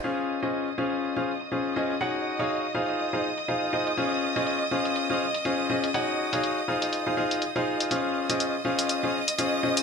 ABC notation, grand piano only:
X:1
M:4/4
L:1/16
Q:"Swing 16ths" 1/4=122
K:Db
V:1 name="Grand piano"
[DFAcf]3 [DFAce]2 z [DFAcf]3 [DFAcf] z2 [DFAcf]2 [DFAce] z | [EGAdg]3 [EGAdf]2 z [EFAcf]3 [EFAcf] z2 [EFAcf]2 [EFAce] z | [DFAcf]3 [DFAce]2 z [DFAcf]3 [DFAcf] z2 [DFAcf]2 [DFAce] z | [EGAdg]3 [EGAdf]2 z [EFAcf]3 [EFAcf] [EFAcf]2 z [EFAcf]3 |
[DFAcf]3 [DFAce]2 z [DFAcf]3 [DFAcf] z2 [DFAcf]2 [DFAce] z |]